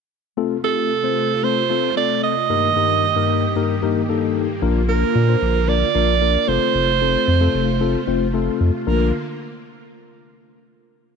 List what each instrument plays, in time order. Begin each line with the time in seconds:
0.37 string machine C3 A3 F4, tine electric piano A3 C4 F4 A4
0.64 tine electric piano A3 C4 F4 G4, alto saxophone A4
1.04 tine electric piano A3 C4 F4 C5
1.43 tine electric piano A3 C4 F4 A4, alto saxophone C5
1.70 tine electric piano A3 C4 F4 A4
1.96 tine electric piano A3 C4 F4 A4, alto saxophone D5
2.23 alto saxophone D#5
2.50 tine electric piano G2 A#3 D#4 G4 A#4, string machine G2 D#3 A#3 G4
2.76 tine electric piano G2 A#3 D#4 G4 A#4
3.16 tine electric piano G2 A#3 D#4 G4 A#4
3.56 tine electric piano G2 A#3 D#4 G4 A#4
3.82 tine electric piano G2 A#3 D#4 G4 A#4
4.09 tine electric piano G2 A#3 D#4 G4 A4
4.62 sub bass A#1, string machine D3 F4, tine electric piano A#3 D4 F4 A#4
4.89 tine electric piano A#3 D4 F4 A#4, alto saxophone A#4
5.15 sub bass A#2
5.28 tine electric piano A#3 D4 F4 C5
5.42 sub bass A#1
5.68 tine electric piano A#3 D4 F4 A#4, alto saxophone D5
5.95 sub bass A#1, tine electric piano A#3 D4 F4 A#4
6.21 tine electric piano A#3 D4 F4 A#4
6.48 sub bass F1, string machine C3 A3 F4, tine electric piano A3 C4 F4 A4, alto saxophone C5
6.75 sub bass F1
7.01 tine electric piano A3 C4 F4 A4
7.28 sub bass F2
7.41 tine electric piano A3 C4 F4 A4
7.54 sub bass F1
7.81 tine electric piano A3 C4 F4 A4
8.07 sub bass F1, tine electric piano A3 C4 F4 C5
8.34 tine electric piano A3 C4 F4 A4
8.60 sub bass F2
8.87 sub bass A#1, string machine D3 A#3 F4, tine electric piano A#3 D4 F4 A#4, alto saxophone A#4